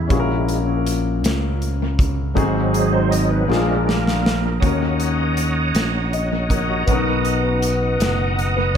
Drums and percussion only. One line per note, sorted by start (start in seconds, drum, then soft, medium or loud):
0.10 kick loud
0.10 closed hi-hat medium
0.49 closed hi-hat medium
0.87 closed hi-hat medium
1.24 snare loud
1.24 closed hi-hat medium
1.62 closed hi-hat soft
1.99 kick loud
1.99 closed hi-hat medium
2.37 kick loud
2.37 closed hi-hat medium
2.74 closed hi-hat medium
3.12 closed hi-hat medium
3.52 snare medium
3.89 snare medium
4.07 snare medium
4.26 snare loud
4.62 kick medium
4.62 closed hi-hat medium
5.00 closed hi-hat soft
5.37 closed hi-hat medium
5.75 snare loud
5.75 closed hi-hat medium
6.13 closed hi-hat soft
6.50 kick medium
6.50 closed hi-hat medium
6.88 kick medium
6.88 closed hi-hat medium
7.25 closed hi-hat soft
7.62 closed hi-hat medium
8.00 snare loud
8.00 closed hi-hat medium
8.39 closed hi-hat soft